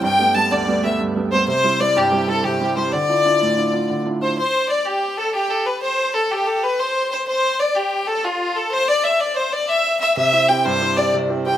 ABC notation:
X:1
M:9/8
L:1/16
Q:3/8=124
K:C
V:1 name="Fiddle"
g4 a2 d4 e2 z4 c2 | c4 d2 G4 A2 G4 c2 | d12- d2 z2 c2 | c4 d2 G4 A2 G2 A2 B2 |
c4 A2 G4 B2 c4 c2 | c4 d2 G3- G/2 G/2 A2 F4 A2 | c2 d2 e2 d2 c2 d2 e4 e2 | e4 g2 c4 d2 z4 g2 |]
V:2 name="Fiddle"
g4 a2 d4 e2 z4 c2 | c4 d2 G4 A2 G4 c2 | d12- d2 z2 c2 | c4 d2 G4 A2 G4 B2 |
c4 A2 G2 A2 B2 c6 | c4 d2 G4 A2 F4 A2 | c2 d2 e2 d2 c2 d2 e4 e2 | e4 g2 c4 d2 z4 g2 |]
V:3 name="Upright piano"
G,,2 [G,A,B,]2 [G,A,B,]2 D,,2 [G,A,B,]2 [G,A,B,]2 G,,2 [G,A,B,]2 [G,A,B,]2 | C,2 [G,CE]2 [G,CE]2 G,,2 [G,CE]2 [G,CE]2 C,2 [G,CE]2 [G,CE]2 | D,2 [DEF]2 [DEF]2 A,,2 [DEF]2 [DEF]2 D,2 [DEF]2 [DEF]2 | z16 z2 |
z16 z2 | z16 z2 | z16 z2 | C,2 [CEG]2 [CEG]2 G,,2 [CEG]2 [CEG]2 C,2 [CEG]2 [CEG]2 |]